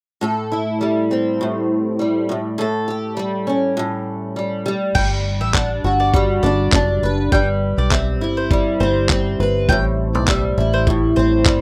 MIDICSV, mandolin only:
0, 0, Header, 1, 2, 480
1, 0, Start_track
1, 0, Tempo, 591716
1, 178, Time_signature, 4, 2, 24, 8
1, 9420, End_track
2, 0, Start_track
2, 0, Title_t, "Mandolin"
2, 0, Program_c, 0, 25
2, 4014, Note_on_c, 0, 79, 86
2, 4142, Note_off_c, 0, 79, 0
2, 4387, Note_on_c, 0, 76, 74
2, 4491, Note_off_c, 0, 76, 0
2, 4495, Note_on_c, 0, 78, 62
2, 4623, Note_off_c, 0, 78, 0
2, 4866, Note_on_c, 0, 74, 67
2, 4971, Note_off_c, 0, 74, 0
2, 5214, Note_on_c, 0, 74, 76
2, 5566, Note_off_c, 0, 74, 0
2, 5939, Note_on_c, 0, 79, 84
2, 6065, Note_off_c, 0, 79, 0
2, 6314, Note_on_c, 0, 74, 72
2, 6421, Note_off_c, 0, 74, 0
2, 6421, Note_on_c, 0, 76, 69
2, 6546, Note_off_c, 0, 76, 0
2, 6790, Note_on_c, 0, 72, 59
2, 6893, Note_off_c, 0, 72, 0
2, 7140, Note_on_c, 0, 72, 66
2, 7489, Note_off_c, 0, 72, 0
2, 7860, Note_on_c, 0, 79, 87
2, 7984, Note_off_c, 0, 79, 0
2, 8231, Note_on_c, 0, 74, 72
2, 8334, Note_off_c, 0, 74, 0
2, 8334, Note_on_c, 0, 76, 63
2, 8461, Note_off_c, 0, 76, 0
2, 8709, Note_on_c, 0, 72, 63
2, 8811, Note_off_c, 0, 72, 0
2, 9054, Note_on_c, 0, 72, 65
2, 9404, Note_off_c, 0, 72, 0
2, 9420, End_track
0, 0, End_of_file